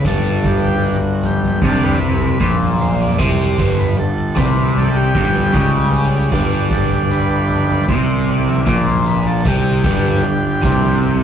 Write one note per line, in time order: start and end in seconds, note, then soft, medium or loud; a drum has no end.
0.04 1.58 G1 medium
0.04 1.61 G2 loud
0.04 0.67 A4 medium
0.04 kick loud
0.04 floor tom medium
0.04 tambourine soft
0.25 tambourine soft
0.44 0.97 D3 medium
0.44 0.98 G3 soft
0.44 0.98 D4 medium
0.44 kick loud
0.44 floor tom medium
0.44 tambourine soft
0.63 0.84 G4 medium
0.63 floor tom medium
0.63 tambourine soft
0.83 1.26 F#4 medium
0.83 tambourine medium
1.04 tambourine soft
1.23 1.61 G4 medium
1.23 floor tom medium
1.23 tambourine loud
1.43 floor tom medium
1.62 2.36 C2 medium
1.62 2.40 C3 loud
1.62 1.99 D3 soft
1.62 1.99 G3 soft
1.62 1.99 D4 medium
1.62 1.84 A4 medium
1.62 kick loud
1.62 floor tom medium
1.62 mid tom medium
1.62 tambourine medium
1.81 2.57 B4 loud
1.81 mid tom medium
2.01 floor tom medium
2.01 tambourine soft
2.21 floor tom loud
2.21 tambourine soft
2.40 3.15 A#1 loud
2.40 3.18 A#2 loud
2.40 kick loud
2.40 floor tom medium
2.40 tambourine medium
2.60 floor tom medium
2.60 tambourine soft
2.80 3.01 C5 loud
2.80 mid tom medium
2.80 tambourine medium
3.00 3.19 D5 medium
3.00 mid tom medium
3.00 tambourine medium
3.19 3.56 C2 loud
3.19 3.57 C3 loud
3.19 3.80 C5 loud
3.19 kick loud
3.19 floor tom medium
3.19 tambourine soft
3.40 tambourine soft
3.58 3.95 G1 medium
3.58 3.96 G2 loud
3.58 kick medium
3.58 floor tom medium
3.58 tambourine soft
3.79 3.97 B4 medium
3.79 floor tom medium
3.79 tambourine soft
3.97 4.34 G1 medium
3.97 4.29 G2 medium
3.97 4.39 A4 medium
3.97 tambourine medium
4.36 5.11 C2 loud
4.36 5.14 C3 loud
4.36 4.78 B4 medium
4.36 kick loud
4.36 floor tom medium
4.36 tambourine medium
4.57 floor tom medium
4.76 6.31 G3 soft
4.76 4.97 A4 medium
4.76 7.86 D5 medium
4.76 floor tom medium
4.76 tambourine medium
4.96 5.71 G4 medium
5.15 5.52 G1 medium
5.15 5.53 G2 loud
5.15 kick loud
5.15 floor tom medium
5.35 floor tom medium
5.53 6.29 C#2 loud
5.53 6.31 C#3 loud
5.53 kick loud
5.53 floor tom medium
5.53 tambourine medium
5.74 floor tom medium
5.74 tambourine soft
5.94 tambourine medium
6.12 tambourine medium
6.32 7.85 G1 loud
6.32 7.88 G2 loud
6.32 6.68 D3 medium
6.32 6.68 G3 soft
6.32 6.68 D4 medium
6.32 kick loud
6.32 floor tom medium
6.32 tambourine soft
6.51 tambourine soft
6.71 7.85 D3 medium
6.71 7.86 G3 soft
6.71 7.86 D4 medium
6.71 6.89 A4 medium
6.71 kick loud
6.71 floor tom medium
6.71 tambourine soft
6.90 floor tom medium
6.90 tambourine soft
7.11 7.92 B4 medium
7.11 tambourine medium
7.49 floor tom medium
7.49 tambourine medium
7.69 floor tom medium
7.88 8.63 C2 loud
7.88 8.66 C3 loud
7.88 8.30 C5 loud
7.88 kick loud
7.88 floor tom medium
7.88 tambourine medium
8.09 tambourine soft
8.28 8.50 D5 loud
8.28 floor tom medium
8.48 8.69 E5 loud
8.48 floor tom medium
8.66 9.42 A#1 loud
8.66 9.44 A#2 loud
8.66 8.88 D5 medium
8.66 kick loud
8.66 floor tom medium
8.66 tambourine medium
8.86 9.06 C5 medium
8.86 floor tom medium
8.86 tambourine soft
9.06 9.28 B4 medium
9.06 tambourine medium
9.27 9.47 A4 medium
9.45 9.82 C2 loud
9.45 9.84 C3 loud
9.45 11.23 G4 medium
9.45 kick loud
9.45 floor tom loud
9.45 tambourine soft
9.66 tambourine soft
9.84 10.22 G1 medium
9.84 10.23 G2 loud
9.84 10.99 D3 soft
9.84 10.99 G3 soft
9.84 11.00 D4 medium
9.84 kick loud
9.84 floor tom medium
9.84 tambourine soft
10.04 floor tom medium
10.04 tambourine soft
10.24 10.61 G1 medium
10.24 10.56 G2 medium
10.24 tambourine medium
10.62 11.23 C2 loud
10.62 11.23 C3 loud
10.62 kick loud
10.62 floor tom medium
10.62 tambourine medium
10.83 floor tom medium
11.01 floor tom loud
11.01 tambourine medium